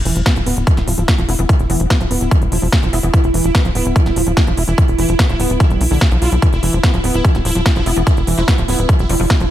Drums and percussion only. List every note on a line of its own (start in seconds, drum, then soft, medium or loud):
0.05 open hi-hat loud
0.16 closed hi-hat medium
0.26 kick loud
0.26 snare loud
0.26 closed hi-hat medium
0.36 closed hi-hat soft
0.46 open hi-hat loud
0.57 closed hi-hat medium
0.67 kick loud
0.67 closed hi-hat medium
0.77 snare soft
0.77 closed hi-hat soft
0.88 open hi-hat loud
0.98 closed hi-hat medium
1.08 kick loud
1.08 snare loud
1.08 closed hi-hat medium
1.18 closed hi-hat soft
1.29 open hi-hat loud
1.39 closed hi-hat medium
1.49 kick loud
1.49 closed hi-hat medium
1.59 closed hi-hat soft
1.70 open hi-hat loud
1.80 closed hi-hat medium
1.90 kick loud
1.90 snare loud
1.90 closed hi-hat medium
2.01 closed hi-hat soft
2.11 open hi-hat loud
2.21 closed hi-hat medium
2.31 kick loud
2.31 closed hi-hat soft
2.42 closed hi-hat soft
2.52 open hi-hat loud
2.62 open hi-hat medium
2.72 kick loud
2.72 snare loud
2.83 closed hi-hat soft
2.93 open hi-hat loud
3.03 closed hi-hat medium
3.14 kick loud
3.14 closed hi-hat medium
3.24 closed hi-hat soft
3.34 open hi-hat loud
3.44 closed hi-hat medium
3.55 kick loud
3.55 snare loud
3.55 closed hi-hat medium
3.65 closed hi-hat soft
3.75 open hi-hat loud
3.86 closed hi-hat medium
3.96 kick loud
3.96 closed hi-hat soft
4.06 snare soft
4.06 closed hi-hat soft
4.16 open hi-hat loud
4.27 closed hi-hat soft
4.37 kick loud
4.37 snare loud
4.37 closed hi-hat soft
4.47 closed hi-hat soft
4.57 open hi-hat loud
4.68 closed hi-hat medium
4.78 kick loud
4.78 closed hi-hat medium
4.88 closed hi-hat soft
4.99 open hi-hat loud
5.09 closed hi-hat soft
5.19 kick loud
5.19 snare loud
5.19 closed hi-hat soft
5.29 closed hi-hat soft
5.40 open hi-hat loud
5.50 closed hi-hat soft
5.60 kick loud
5.60 closed hi-hat soft
5.70 closed hi-hat soft
5.81 open hi-hat loud
5.91 open hi-hat medium
6.01 kick loud
6.01 snare loud
6.01 closed hi-hat soft
6.12 closed hi-hat soft
6.22 open hi-hat loud
6.32 closed hi-hat medium
6.42 kick loud
6.42 closed hi-hat medium
6.53 closed hi-hat soft
6.63 open hi-hat loud
6.73 closed hi-hat soft
6.83 kick loud
6.83 snare loud
6.83 closed hi-hat soft
6.94 closed hi-hat soft
7.04 open hi-hat loud
7.14 closed hi-hat soft
7.25 kick loud
7.25 closed hi-hat soft
7.35 snare soft
7.35 closed hi-hat soft
7.45 open hi-hat loud
7.55 closed hi-hat soft
7.66 kick loud
7.66 snare loud
7.66 closed hi-hat soft
7.76 closed hi-hat soft
7.86 open hi-hat loud
7.96 closed hi-hat medium
8.07 kick loud
8.07 closed hi-hat medium
8.17 closed hi-hat soft
8.27 open hi-hat loud
8.38 closed hi-hat medium
8.48 kick loud
8.48 snare loud
8.48 closed hi-hat medium
8.58 closed hi-hat soft
8.68 open hi-hat loud
8.79 closed hi-hat medium
8.89 kick loud
8.89 closed hi-hat soft
8.99 closed hi-hat soft
9.09 open hi-hat loud
9.30 kick loud
9.30 snare loud
9.30 closed hi-hat soft
9.40 closed hi-hat soft